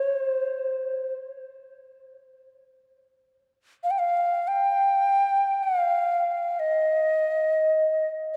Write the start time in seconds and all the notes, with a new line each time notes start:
0.00 C#5
0.23 C5
3.84 F5
3.91 G5
3.99 F5
4.48 G5
5.63 F5
6.60 D#5